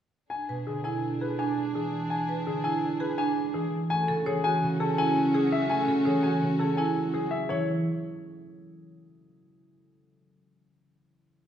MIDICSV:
0, 0, Header, 1, 6, 480
1, 0, Start_track
1, 0, Tempo, 359281
1, 418, Time_signature, 5, 2, 24, 8
1, 15325, End_track
2, 0, Start_track
2, 0, Title_t, "Grand piano"
2, 0, Program_c, 0, 0
2, 401, Note_on_c, 0, 80, 65
2, 725, Note_off_c, 0, 80, 0
2, 892, Note_on_c, 0, 68, 55
2, 1123, Note_on_c, 0, 80, 57
2, 1208, Note_off_c, 0, 68, 0
2, 1445, Note_off_c, 0, 80, 0
2, 1619, Note_on_c, 0, 71, 56
2, 1854, Note_on_c, 0, 80, 61
2, 1931, Note_off_c, 0, 71, 0
2, 2169, Note_off_c, 0, 80, 0
2, 2339, Note_on_c, 0, 68, 55
2, 2651, Note_off_c, 0, 68, 0
2, 2809, Note_on_c, 0, 80, 66
2, 3127, Note_off_c, 0, 80, 0
2, 3296, Note_on_c, 0, 68, 58
2, 3527, Note_on_c, 0, 80, 69
2, 3610, Note_off_c, 0, 68, 0
2, 3846, Note_off_c, 0, 80, 0
2, 4011, Note_on_c, 0, 71, 64
2, 4248, Note_on_c, 0, 80, 76
2, 4328, Note_off_c, 0, 71, 0
2, 4567, Note_off_c, 0, 80, 0
2, 4730, Note_on_c, 0, 68, 67
2, 5048, Note_off_c, 0, 68, 0
2, 5212, Note_on_c, 0, 80, 86
2, 5529, Note_off_c, 0, 80, 0
2, 5695, Note_on_c, 0, 68, 72
2, 5931, Note_on_c, 0, 80, 83
2, 6009, Note_off_c, 0, 68, 0
2, 6248, Note_off_c, 0, 80, 0
2, 6413, Note_on_c, 0, 69, 73
2, 6657, Note_on_c, 0, 80, 80
2, 6729, Note_off_c, 0, 69, 0
2, 6970, Note_off_c, 0, 80, 0
2, 7142, Note_on_c, 0, 68, 69
2, 7380, Note_on_c, 0, 76, 78
2, 7452, Note_off_c, 0, 68, 0
2, 7612, Note_on_c, 0, 80, 72
2, 7691, Note_off_c, 0, 76, 0
2, 7928, Note_off_c, 0, 80, 0
2, 8086, Note_on_c, 0, 68, 68
2, 8325, Note_on_c, 0, 80, 72
2, 8406, Note_off_c, 0, 68, 0
2, 8646, Note_off_c, 0, 80, 0
2, 8806, Note_on_c, 0, 69, 62
2, 9048, Note_on_c, 0, 80, 73
2, 9126, Note_off_c, 0, 69, 0
2, 9367, Note_off_c, 0, 80, 0
2, 9534, Note_on_c, 0, 68, 60
2, 9763, Note_on_c, 0, 76, 70
2, 9849, Note_off_c, 0, 68, 0
2, 10008, Note_on_c, 0, 73, 76
2, 10085, Note_off_c, 0, 76, 0
2, 10236, Note_off_c, 0, 73, 0
2, 15325, End_track
3, 0, Start_track
3, 0, Title_t, "Marimba"
3, 0, Program_c, 1, 12
3, 656, Note_on_c, 1, 71, 52
3, 970, Note_off_c, 1, 71, 0
3, 1134, Note_on_c, 1, 64, 65
3, 1449, Note_off_c, 1, 64, 0
3, 1620, Note_on_c, 1, 68, 52
3, 1858, Note_on_c, 1, 62, 70
3, 1931, Note_off_c, 1, 68, 0
3, 2170, Note_off_c, 1, 62, 0
3, 3056, Note_on_c, 1, 71, 58
3, 3370, Note_off_c, 1, 71, 0
3, 3534, Note_on_c, 1, 64, 76
3, 3849, Note_off_c, 1, 64, 0
3, 4010, Note_on_c, 1, 68, 68
3, 4252, Note_on_c, 1, 62, 76
3, 4328, Note_off_c, 1, 68, 0
3, 4568, Note_off_c, 1, 62, 0
3, 5456, Note_on_c, 1, 69, 77
3, 5696, Note_on_c, 1, 73, 67
3, 5770, Note_off_c, 1, 69, 0
3, 5940, Note_on_c, 1, 66, 83
3, 6010, Note_off_c, 1, 73, 0
3, 6251, Note_off_c, 1, 66, 0
3, 6417, Note_on_c, 1, 68, 66
3, 6659, Note_on_c, 1, 64, 88
3, 6730, Note_off_c, 1, 68, 0
3, 6971, Note_off_c, 1, 64, 0
3, 7138, Note_on_c, 1, 68, 73
3, 7451, Note_off_c, 1, 68, 0
3, 7861, Note_on_c, 1, 69, 68
3, 8102, Note_on_c, 1, 73, 59
3, 8172, Note_off_c, 1, 69, 0
3, 8339, Note_on_c, 1, 66, 77
3, 8412, Note_off_c, 1, 73, 0
3, 8651, Note_off_c, 1, 66, 0
3, 8824, Note_on_c, 1, 68, 61
3, 9062, Note_on_c, 1, 64, 80
3, 9132, Note_off_c, 1, 68, 0
3, 9372, Note_off_c, 1, 64, 0
3, 9545, Note_on_c, 1, 68, 59
3, 9853, Note_off_c, 1, 68, 0
3, 10026, Note_on_c, 1, 64, 75
3, 10246, Note_off_c, 1, 64, 0
3, 15325, End_track
4, 0, Start_track
4, 0, Title_t, "Violin section"
4, 0, Program_c, 2, 48
4, 417, Note_on_c, 2, 62, 54
4, 425, Note_on_c, 2, 68, 53
4, 4925, Note_off_c, 2, 62, 0
4, 4929, Note_off_c, 2, 68, 0
4, 5205, Note_on_c, 2, 66, 77
4, 5209, Note_on_c, 2, 61, 76
4, 9718, Note_off_c, 2, 66, 0
4, 9720, Note_off_c, 2, 61, 0
4, 15325, End_track
5, 0, Start_track
5, 0, Title_t, "Clarinet"
5, 0, Program_c, 3, 71
5, 407, Note_on_c, 3, 62, 61
5, 4920, Note_off_c, 3, 62, 0
5, 5208, Note_on_c, 3, 61, 86
5, 9720, Note_off_c, 3, 61, 0
5, 15325, End_track
6, 0, Start_track
6, 0, Title_t, "Harp"
6, 0, Program_c, 4, 46
6, 650, Note_on_c, 4, 47, 52
6, 897, Note_on_c, 4, 50, 56
6, 2095, Note_on_c, 4, 56, 53
6, 2328, Note_on_c, 4, 52, 55
6, 3275, Note_off_c, 4, 50, 0
6, 3291, Note_on_c, 4, 50, 63
6, 4474, Note_off_c, 4, 56, 0
6, 4490, Note_on_c, 4, 56, 62
6, 4713, Note_off_c, 4, 52, 0
6, 4729, Note_on_c, 4, 52, 63
6, 5214, Note_on_c, 4, 57, 85
6, 5233, Note_off_c, 4, 52, 0
6, 5234, Note_off_c, 4, 47, 0
6, 5234, Note_off_c, 4, 50, 0
6, 5234, Note_off_c, 4, 56, 0
6, 5456, Note_on_c, 4, 49, 72
6, 5701, Note_on_c, 4, 52, 73
6, 6171, Note_off_c, 4, 49, 0
6, 6187, Note_on_c, 4, 49, 78
6, 6901, Note_on_c, 4, 56, 69
6, 7138, Note_on_c, 4, 54, 71
6, 7599, Note_off_c, 4, 57, 0
6, 7615, Note_on_c, 4, 57, 81
6, 7836, Note_off_c, 4, 49, 0
6, 7852, Note_on_c, 4, 49, 62
6, 8076, Note_off_c, 4, 52, 0
6, 8092, Note_on_c, 4, 52, 63
6, 8564, Note_off_c, 4, 49, 0
6, 8580, Note_on_c, 4, 49, 65
6, 9285, Note_off_c, 4, 56, 0
6, 9301, Note_on_c, 4, 56, 59
6, 9527, Note_off_c, 4, 54, 0
6, 9543, Note_on_c, 4, 54, 62
6, 10005, Note_off_c, 4, 52, 0
6, 10021, Note_on_c, 4, 52, 84
6, 10036, Note_off_c, 4, 57, 0
6, 10038, Note_off_c, 4, 49, 0
6, 10040, Note_off_c, 4, 54, 0
6, 10243, Note_off_c, 4, 52, 0
6, 12439, Note_off_c, 4, 56, 0
6, 15325, End_track
0, 0, End_of_file